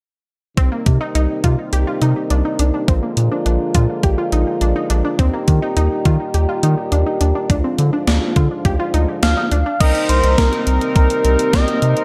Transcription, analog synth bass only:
0.57 0.69 C2 medium
0.86 0.98 C3 medium
1.15 1.27 C2 loud
1.44 1.56 C3 loud
1.73 1.85 C2 loud
2.02 2.14 C3 loud
2.31 2.43 C2 loud
2.59 2.71 C2 medium
2.88 3.00 A#1 loud
3.17 3.29 A#2 medium
3.46 3.58 A#1 loud
3.75 3.87 A#2 loud
4.03 4.16 A#1 medium
4.32 4.44 A#1 loud
4.61 4.73 A#1 loud
4.90 5.02 A#1 loud
5.19 5.31 D#2 loud
5.48 5.60 D#3 medium
5.77 5.89 D#2 loud
6.06 6.18 D#3 loud
6.34 6.46 D#2 loud
6.63 6.75 D#3 medium
6.92 7.04 D#2 loud
7.21 7.33 D#2 medium
7.50 7.62 D2 loud
7.79 7.91 D3 loud
8.07 8.19 D2 medium
8.36 8.48 D3 loud
8.65 8.77 D2 loud
8.94 9.06 D2 medium
9.23 9.35 D2 loud
9.52 9.64 D2 medium
9.80 9.93 C2 loud
10.09 10.21 C2 medium
10.24 10.36 C2 medium
10.38 10.50 C2 loud
10.67 10.79 C2 loud
10.96 11.08 C2 loud
11.25 11.37 C2 loud
11.53 11.66 C2 loud
11.82 11.94 C3 loud

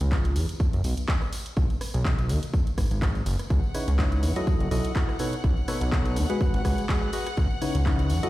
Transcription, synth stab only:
3.75 3.90 C#3 medium
3.75 3.90 D#4 medium
3.75 3.90 E4 medium
3.75 3.90 B4 medium
3.75 3.90 C#5 medium
3.99 4.33 C#3 medium
3.99 4.33 D#4 medium
3.99 4.33 E4 medium
3.99 4.33 B4 medium
3.99 4.33 C#5 medium
4.36 4.69 F#3 loud
4.36 4.69 E4 medium
4.36 4.69 F#4 medium
4.36 4.69 A4 medium
4.36 4.69 D#5 loud
4.71 4.92 F#3 medium
4.71 4.92 E4 medium
4.71 4.92 F#4 medium
4.71 4.92 A4 medium
4.71 4.92 D#5 loud
4.95 5.17 E4 medium
4.95 5.17 F#4 medium
4.95 5.17 A4 medium
4.95 5.17 D#5 medium
5.20 5.35 B2 medium
5.20 5.35 D#4 medium
5.20 5.35 A4 medium
5.20 5.35 B4 medium
5.20 5.35 C#5 medium
5.68 5.83 B2 medium
5.68 5.83 D#4 medium
5.68 5.83 A4 medium
5.68 5.83 B4 medium
5.68 5.83 C#5 medium
5.92 6.27 B2 medium
5.92 6.27 D#4 medium
5.92 6.27 A4 medium
5.92 6.27 B4 medium
5.92 6.27 C#5 medium
6.30 6.62 G#3 loud
6.30 6.62 F#4 medium
6.30 6.62 G#4 medium
6.30 6.62 B4 medium
6.30 6.62 F#5 loud
6.65 6.86 G#3 loud
6.65 6.86 F#4 medium
6.65 6.86 G#4 medium
6.65 6.86 B4 medium
6.65 6.86 F#5 loud
6.89 7.11 G#3 medium
6.89 7.11 F#4 medium
6.89 7.11 G#4 medium
6.89 7.11 B4 medium
6.89 7.11 F#5 medium
7.13 7.29 F#4 medium
7.13 7.29 G#4 medium
7.13 7.29 B4 medium
7.13 7.29 D#5 medium
7.62 7.77 C#3 medium
7.62 7.77 D#4 medium
7.62 7.77 E4 medium
7.62 7.77 B4 medium
7.62 7.77 C#5 medium
7.86 8.20 C#3 medium
7.86 8.20 D#4 medium
7.86 8.20 E4 medium
7.86 8.20 B4 medium
7.86 8.20 C#5 medium
8.23 8.29 F#3 loud
8.23 8.29 E4 medium
8.23 8.29 F#4 medium
8.23 8.29 A4 loud
8.23 8.29 D#5 loud

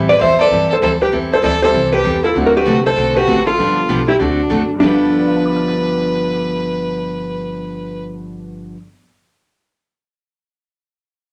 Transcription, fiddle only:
0.10 0.22 B4 medium
0.20 0.39 C5 loud
0.40 0.69 A4 loud
0.70 0.76 A4 medium
0.83 1.03 A4 medium
1.03 1.13 G4 medium
1.33 1.43 A4 medium
1.43 1.62 A4 loud
1.63 1.91 A4 medium
1.93 2.22 G4 medium
2.25 2.35 E4 medium
2.47 2.55 F#4 medium
2.56 2.84 F#4 medium
2.86 3.14 A4 medium
3.16 3.45 F#4 loud
3.46 4.04 F4 medium
4.09 4.21 E4 medium
4.20 4.70 D4 medium
4.81 8.02 B4 medium

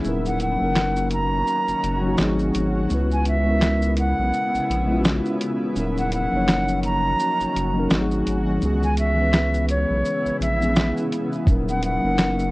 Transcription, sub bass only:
0.05 0.57 D#1 loud
0.61 1.44 F#1 medium
1.68 1.74 F#1 soft
1.84 2.16 F#1 medium
2.20 2.52 G#1 medium
2.55 2.87 G#1 medium
2.91 4.14 C#2 loud
4.19 4.32 B1 medium
4.54 4.60 A#1 soft
4.70 5.22 A#1 medium
5.76 6.28 D#1 loud
6.33 7.15 F#1 medium
7.40 7.46 F#1 medium
7.56 7.88 F#1 medium
7.91 8.23 G#1 loud
8.27 8.59 G#1 loud
8.62 9.86 C#2 loud
9.90 10.04 B1 medium
10.25 10.31 A#1 soft
10.41 10.93 A#1 medium
11.47 12.00 D#1 loud
12.04 12.51 F#1 medium

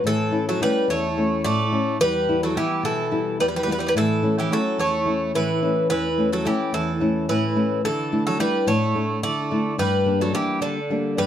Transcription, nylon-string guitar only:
0.04 0.59 A2 medium
0.31 0.59 A3 soft
0.31 0.60 C#4 soft
0.31 0.60 E4 medium
0.60 1.05 A3 soft
0.60 1.05 C#4 soft
0.60 1.05 E4 medium
0.88 1.43 E2 medium
1.17 1.61 A3 soft
1.17 1.62 C#4 soft
1.17 1.62 E4 medium
1.45 1.99 A2 medium
1.72 1.94 A3 soft
1.72 1.95 C#4 soft
1.72 1.95 E4 medium
2.00 2.54 E2 medium
2.28 2.55 G3 soft
2.28 2.55 B3 soft
2.28 2.56 E4 medium
2.56 3.01 G3 medium
2.56 3.01 B3 soft
2.56 3.01 E4 medium
2.83 3.38 B2 medium
3.11 3.56 G3 soft
3.11 3.56 B3 soft
3.11 3.56 E4 medium
3.40 3.94 E2 medium
3.66 3.89 G3 soft
3.66 3.89 B3 soft
3.66 3.90 E4 medium
3.94 4.49 A2 medium
4.22 4.49 A3 soft
4.22 4.50 C#4 soft
4.22 4.50 E4 medium
4.50 4.95 A3 soft
4.50 4.95 C#4 soft
4.50 4.96 E4 medium
4.78 5.32 E2 medium
5.06 5.50 A3 soft
5.06 5.51 C#4 soft
5.06 5.51 E4 medium
5.34 5.88 A2 medium
5.62 6.07 A3 soft
5.62 6.07 C#4 soft
5.62 6.07 E4 medium
5.91 6.44 E2 medium
6.18 6.44 A3 soft
6.18 6.44 C#4 soft
6.18 6.45 E4 medium
6.45 6.90 A3 medium
6.45 6.90 C#4 soft
6.45 6.90 E4 medium
6.72 7.27 E2 medium
7.00 7.45 A3 soft
7.00 7.45 C#4 soft
7.00 7.46 E4 medium
7.29 7.83 A2 medium
7.56 7.78 A3 medium
7.56 7.79 C#4 soft
7.56 7.79 E4 medium
7.85 8.38 D3 medium
8.12 8.38 A3 soft
8.12 8.38 D4 soft
8.12 8.39 E4 medium
8.39 8.84 A3 medium
8.39 8.84 D4 soft
8.39 8.84 E4 medium
8.67 9.21 A2 medium
8.95 9.39 A3 medium
8.95 9.39 D4 soft
8.95 9.40 E4 medium
9.23 9.77 D3 medium
9.51 9.73 A3 medium
9.51 9.73 D4 soft
9.51 9.73 E4 medium
9.78 10.32 G2 medium
10.06 10.32 G3 medium
10.06 10.32 A#3 soft
10.06 10.33 D4 medium
10.33 10.78 G3 medium
10.33 10.78 A#3 soft
10.33 10.78 D4 medium
10.61 11.15 D3 medium
10.90 11.27 G3 soft
10.90 11.27 A#3 soft
10.90 11.27 D4 medium
11.17 11.27 G2 medium

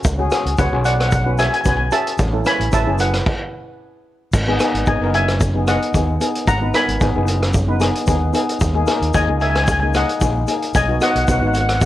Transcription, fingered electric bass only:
0.05 0.26 C#2 loud
0.45 0.55 C#2 medium
0.58 0.69 C#2 medium
0.72 1.45 B1 loud
1.66 1.86 B1 medium
2.19 2.40 A1 loud
2.60 2.70 A1 medium
2.73 2.84 A1 loud
2.87 3.18 F#1 loud
4.33 4.54 G#1 loud
4.74 4.84 G#1 medium
4.87 4.98 G#1 loud
5.01 5.73 F#1 loud
5.94 6.15 D#2 medium
6.47 6.68 G#1 loud
6.88 6.98 G#1 medium
7.01 7.12 G#1 loud
7.15 7.87 F#1 loud
8.08 8.28 D#2 medium
8.61 8.82 D#2 loud
9.01 9.11 D#2 medium
9.14 9.25 D#2 loud
9.28 10.01 C#2 loud
10.21 10.42 A#1 medium
10.75 10.95 B1 loud
11.15 11.25 B1 medium
11.28 11.39 B1 loud
11.42 11.85 G#1 loud

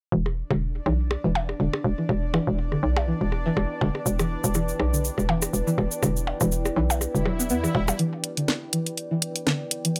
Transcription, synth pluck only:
0.12 0.16 E3 loud
0.50 0.55 D3 medium
0.86 0.92 E3 medium
1.24 1.27 E3 loud
1.60 1.65 D3 medium
1.98 2.03 E3 medium
2.34 2.37 E3 loud
2.72 2.76 D3 medium
3.08 3.13 E3 medium
3.46 3.48 E3 loud
3.81 3.87 D3 medium
4.20 4.24 E3 medium
4.55 4.58 E3 medium
4.93 4.98 D3 medium
5.29 5.34 E3 medium
5.67 5.70 E3 loud
6.02 6.08 D3 medium
6.41 6.45 E3 medium
6.76 6.80 E3 loud
7.15 7.19 D3 medium
7.26 7.31 F#3 medium
7.39 7.42 B3 medium
7.50 7.56 B3 medium
7.64 7.70 E3 medium
7.88 7.93 G3 medium
7.99 8.03 E3 loud
8.37 8.42 D3 medium
8.73 8.79 E3 medium
9.11 9.14 E3 loud
9.47 9.52 D3 medium
9.85 9.89 E3 medium

